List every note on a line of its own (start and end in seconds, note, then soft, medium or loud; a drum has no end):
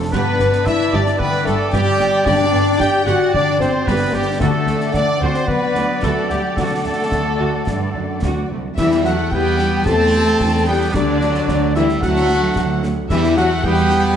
0.00 0.15 F2 medium
0.00 0.15 C3 medium
0.00 0.15 A3 medium
0.00 0.15 F4 medium
0.00 0.13 A4 medium
0.00 0.15 A4 medium
0.00 0.15 F5 medium
0.00 0.15 A5 medium
0.00 1.17 A5 medium
0.11 0.21 G1 loud
0.11 2.26 G2 medium
0.11 0.21 G2 loud
0.11 0.63 B3 loud
0.11 0.38 G4 medium
0.11 0.67 B4 loud
0.11 0.62 B4 loud
0.11 0.63 B4 loud
0.11 4.37 D5 loud
0.11 4.37 D5 medium
0.11 concert bass drum medium
0.11 snare medium
0.11 crash soft
0.26 1.31 G3 medium
0.40 0.48 G1 medium
0.40 0.48 G2 medium
0.40 0.48 B3 medium
0.40 snare medium
0.53 snare medium
0.65 0.75 G1 medium
0.65 0.75 G2 medium
0.65 0.75 D4 medium
0.65 0.94 E4 loud
0.65 0.93 E5 loud
0.65 0.92 E5 loud
0.65 0.93 E5 loud
0.65 1.71 D6 medium
0.65 concert bass drum medium
0.65 snare medium
0.79 1.04 D5 medium
0.92 1.01 G1 loud
0.92 1.01 G2 loud
0.92 1.20 D4 loud
0.92 1.58 G4 medium
0.92 1.18 G4 medium
0.92 1.00 D5 medium
0.92 1.19 D5 medium
0.92 1.20 D5 medium
1.06 snare medium
1.18 3.32 D3 medium
1.18 1.45 B3 loud
1.18 1.26 B4 loud
1.18 1.46 B4 medium
1.18 1.46 B4 loud
1.18 4.14 G5 medium
1.18 concert bass drum medium
1.33 2.38 G3 medium
1.44 1.55 G1 medium
1.44 1.55 G2 medium
1.44 1.57 A3 loud
1.44 1.55 D4 medium
1.44 1.72 A4 medium
1.44 1.73 A4 medium
1.44 1.59 A4 medium
1.44 1.55 A4 medium
1.44 snare medium
1.59 1.99 G4 medium
1.72 1.81 G1 loud
1.72 1.82 G2 loud
1.72 2.26 G3 loud
1.72 2.25 G4 loud
1.72 2.25 G4 medium
1.72 2.25 G4 loud
1.72 2.27 G4 loud
1.72 1.98 G4 medium
1.72 2.78 D6 medium
1.72 concert bass drum medium
1.72 snare medium
2.00 2.08 G1 medium
2.00 2.08 G2 medium
2.00 2.08 B3 medium
2.00 snare medium
2.25 2.34 G1 loud
2.25 4.43 G2 medium
2.25 2.35 G2 loud
2.25 2.80 D4 loud
2.25 2.51 G4 loud
2.25 2.78 D5 loud
2.25 2.79 D5 loud
2.25 2.81 D5 loud
2.25 concert bass drum medium
2.25 snare medium
2.39 3.46 G3 medium
2.52 2.61 G1 medium
2.52 2.62 G2 medium
2.52 2.60 B3 medium
2.79 2.87 G1 medium
2.79 2.88 G2 medium
2.79 2.88 D4 medium
2.79 3.07 G4 loud
2.79 3.08 G5 loud
2.79 3.06 G5 loud
2.79 2.92 G5 loud
2.79 3.07 G5 loud
2.79 3.86 D6 medium
2.79 concert bass drum medium
2.79 snare medium
3.05 3.14 G1 medium
3.05 3.15 G2 loud
3.05 3.32 F#4 loud
3.05 3.31 G4 loud
3.05 3.33 F#5 loud
3.05 3.34 F#5 loud
3.05 3.16 F#5 loud
3.05 snare medium
3.33 4.40 D3 medium
3.33 3.60 D4 loud
3.33 3.60 D5 loud
3.33 concert bass drum medium
3.47 4.43 G3 medium
3.59 3.68 G1 medium
3.59 3.69 G2 medium
3.59 3.86 C4 loud
3.59 3.68 D4 medium
3.59 3.86 C5 medium
3.59 3.89 C5 medium
3.59 3.69 C5 medium
3.59 3.87 C5 medium
3.59 snare medium
3.74 4.13 G4 medium
3.86 3.95 G1 loud
3.86 3.96 G2 loud
3.86 4.13 B3 loud
3.86 4.12 G4 loud
3.86 4.14 B4 loud
3.86 4.13 B4 loud
3.86 3.96 B4 loud
3.86 4.14 B4 loud
3.86 concert bass drum medium
3.86 snare medium
4.01 4.27 D5 medium
4.13 4.22 G1 medium
4.13 4.22 G2 medium
4.13 4.41 G3 loud
4.13 4.22 B3 medium
4.13 4.41 G4 medium
4.13 4.26 G4 medium
4.13 4.43 G4 medium
4.13 4.41 G4 loud
4.13 4.41 G4 medium
4.39 4.49 D2 medium
4.39 4.49 D2 loud
4.39 6.56 D3 medium
4.39 4.94 A3 loud
4.39 4.65 F#4 medium
4.39 4.93 A4 medium
4.39 4.94 A4 medium
4.39 4.94 A4 loud
4.39 8.53 D5 medium
4.39 8.46 D5 loud
4.39 8.46 F#5 medium
4.39 concert bass drum medium
4.39 snare medium
4.54 5.62 D4 medium
4.67 4.75 D2 medium
4.67 4.77 D2 medium
4.67 4.76 A3 medium
4.67 snare medium
4.80 5.07 D6 medium
4.80 snare medium
4.92 5.02 D2 medium
4.92 5.04 D2 medium
4.92 5.20 D4 loud
4.92 5.04 D4 medium
4.92 5.21 D5 loud
4.92 5.22 D5 medium
4.92 5.21 D5 medium
4.92 6.02 F#5 medium
4.92 concert bass drum medium
4.92 snare medium
4.97 5.23 D5 medium
5.08 5.89 D6 medium
5.19 5.29 D2 medium
5.19 5.30 D2 medium
5.19 5.47 C4 loud
5.19 5.49 C5 medium
5.19 5.48 C5 medium
5.19 5.50 C5 medium
5.19 5.48 C5 medium
5.23 5.48 F#4 medium
5.34 5.75 F#4 medium
5.34 snare medium
5.46 7.67 F#3 medium
5.46 6.01 B3 loud
5.46 6.03 B4 medium
5.46 6.02 B4 medium
5.46 6.03 B4 medium
5.46 6.03 B4 loud
5.46 concert bass drum medium
5.64 6.71 D4 medium
5.75 5.83 D2 medium
5.75 5.84 D2 medium
5.75 5.84 D4 medium
5.75 6.42 F#4 medium
5.75 snare medium
6.02 6.11 D2 medium
6.02 6.11 D2 loud
6.02 6.29 A3 loud
6.02 6.28 F#4 medium
6.02 6.30 A4 medium
6.02 6.29 A4 medium
6.02 6.30 A4 medium
6.02 6.12 A4 medium
6.02 7.11 F#5 medium
6.02 concert bass drum medium
6.02 snare medium
6.17 6.98 D6 medium
6.29 6.38 D2 medium
6.29 6.39 D2 medium
6.29 6.42 G3 medium
6.29 6.39 A3 medium
6.29 6.56 G4 medium
6.29 6.55 G4 medium
6.29 6.57 G4 medium
6.29 snare medium
6.43 6.85 F#4 medium
6.56 6.66 D2 medium
6.56 8.80 D3 medium
6.56 8.18 A3 loud
6.56 6.83 F#4 medium
6.56 8.18 A4 medium
6.56 8.19 A4 medium
6.56 8.20 A4 medium
6.56 concert bass drum medium
6.56 snare medium
6.72 7.81 D4 medium
6.85 6.93 D2 medium
6.85 6.93 A3 medium
6.85 7.53 F#4 medium
6.99 7.25 D6 medium
7.11 7.63 D2 medium
7.11 7.20 D2 medium
7.11 7.21 D4 medium
7.11 concert bass drum medium
7.11 snare medium
7.26 8.08 D6 medium
7.40 7.48 D2 medium
7.40 7.66 F#4 medium
7.55 7.95 F#4 medium
7.67 7.94 G2 loud
7.67 8.80 F#3 medium
7.67 concert bass drum medium
7.67 snare medium
7.82 8.80 D4 medium
7.94 8.03 D2 medium
7.94 8.22 F#2 medium
7.94 8.03 D4 medium
7.94 8.63 F#4 medium
8.10 8.36 D6 medium
8.22 8.50 D2 medium
8.22 8.31 D2 medium
8.22 8.48 F#4 medium
8.22 8.80 F#5 medium
8.22 concert bass drum medium
8.22 snare medium
8.37 8.80 D6 medium
8.50 8.77 C2 medium
8.50 8.58 D2 medium
8.50 8.59 A3 medium
8.50 8.80 D5 medium
8.64 8.80 F#4 medium
8.77 9.25 E2 medium
8.77 9.03 E3 loud
8.77 10.97 E3 medium
8.77 9.03 G3 medium
8.77 9.02 E4 loud
8.77 8.86 E4 medium
8.77 8.86 G4 medium
8.77 9.03 E5 loud
8.77 8.90 E5 medium
8.77 9.03 E5 medium
8.77 concert bass drum medium
8.77 snare medium
8.77 crash medium
8.91 9.99 G3 medium
8.91 snare medium
9.04 9.13 F#3 loud
9.04 9.31 A3 medium
9.04 9.13 E4 medium
9.04 9.17 F#4 loud
9.04 9.13 G4 medium
9.04 10.13 B4 medium
9.04 9.31 F#5 loud
9.04 9.32 F#5 loud
9.04 9.31 F#5 loud
9.04 9.32 F#5 medium
9.04 snare medium
9.20 9.73 G4 medium
9.30 9.79 E2 medium
9.30 9.85 G3 medium
9.30 9.85 B3 loud
9.30 9.40 E4 medium
9.30 9.84 G4 loud
9.30 9.40 G4 medium
9.30 9.86 G5 loud
9.30 9.85 G5 loud
9.30 9.86 G5 loud
9.30 9.85 G5 loud
9.30 concert bass drum medium
9.46 10.53 B5 medium
9.59 9.68 E4 medium
9.59 9.68 G4 medium
9.59 snare medium
9.85 10.34 E2 loud
9.85 10.66 A3 loud
9.85 10.66 C4 loud
9.85 9.95 E4 medium
9.85 10.97 E4 medium
9.85 9.95 G4 medium
9.85 10.67 A4 loud
9.85 10.65 A5 loud
9.85 10.66 A5 loud
9.85 concert bass drum medium
9.85 snare medium
10.00 10.97 G3 medium
10.13 10.21 E4 medium
10.13 10.22 G4 medium
10.13 snare medium
10.40 10.88 E2 medium
10.40 10.49 E4 medium
10.40 10.48 G4 medium
10.40 concert bass drum medium
10.40 snare medium
10.54 10.97 B5 medium
10.66 10.94 G3 loud
10.66 10.94 B3 medium
10.66 10.76 E4 medium
10.66 10.94 G4 loud
10.66 10.76 G4 medium
10.66 10.94 G5 medium
10.66 10.94 G5 loud
10.66 10.95 G5 loud
10.93 11.42 D2 medium
10.93 13.12 D3 medium
10.93 11.75 D3 loud
10.93 11.75 F#3 loud
10.93 11.03 A3 medium
10.93 11.74 D4 loud
10.93 11.03 F#4 medium
10.93 11.75 D5 loud
10.93 11.73 D5 medium
10.93 11.73 D5 loud
10.93 11.75 D5 loud
10.93 concert bass drum medium
10.93 snare medium
11.08 12.14 A3 medium
11.21 11.29 A3 medium
11.21 11.29 F#4 medium
11.21 snare medium
11.35 11.87 A4 medium
11.35 snare medium
11.48 11.96 D2 loud
11.48 11.57 A3 medium
11.48 11.56 F#4 medium
11.48 concert bass drum medium
11.48 snare medium
11.62 12.68 D6 medium
11.74 11.84 E3 medium
11.74 12.02 G3 medium
11.74 11.83 A3 medium
11.74 11.87 E4 loud
11.74 11.82 F#4 medium
11.74 11.83 E5 loud
11.74 12.02 E5 medium
11.74 12.04 E5 loud
11.74 11.85 E5 medium
11.74 12.55 F#5 medium
11.74 snare medium
11.89 12.41 A4 medium
11.89 snare medium
12.01 12.50 D2 medium
12.01 12.82 F#3 loud
12.01 12.09 A3 medium
12.01 12.82 A3 loud
12.01 13.12 D4 medium
12.01 12.09 F#4 medium
12.01 12.82 F#4 loud
12.01 12.83 F#5 loud
12.01 12.82 F#5 loud
12.01 concert bass drum medium
12.01 snare medium
12.16 snare medium
12.28 12.36 A3 medium
12.28 12.36 F#4 medium
12.28 13.12 D5 medium
12.28 snare medium
12.43 12.96 A4 medium
12.55 13.04 D2 loud
12.55 12.63 A3 medium
12.55 12.64 F#4 medium
12.55 concert bass drum medium
12.55 snare medium
12.69 13.12 D6 medium
12.83 12.92 A3 medium
12.83 12.92 F#4 medium
12.83 13.13 F#5 medium
12.83 snare medium
12.98 13.13 A4 medium
13.09 13.57 E2 loud
13.09 14.16 E3 loud
13.09 13.36 E3 loud
13.09 13.35 G3 loud
13.09 13.19 G3 medium
13.09 13.35 E4 loud
13.09 13.19 G4 medium
13.09 13.22 E5 loud
13.09 13.35 E5 loud
13.09 13.19 E5 loud
13.09 concert bass drum medium
13.09 snare medium
13.09 crash soft
13.24 snare medium
13.37 13.46 F#3 loud
13.37 13.46 G3 medium
13.37 13.64 A3 loud
13.37 13.50 F#4 loud
13.37 13.45 G4 medium
13.37 13.63 F#5 loud
13.37 13.64 F#5 loud
13.37 13.65 F#5 loud
13.37 snare medium
13.50 14.03 E5 medium
13.63 14.11 E2 loud
13.63 14.16 G3 loud
13.63 13.73 G3 medium
13.63 14.16 B3 loud
13.63 14.16 G4 loud
13.63 13.72 G4 medium
13.63 14.16 G5 loud
13.63 13.90 B5 medium
13.63 concert bass drum medium
13.90 13.99 G3 medium
13.90 13.99 G4 medium
13.90 14.16 B5 medium
13.90 snare medium
14.05 14.16 E5 medium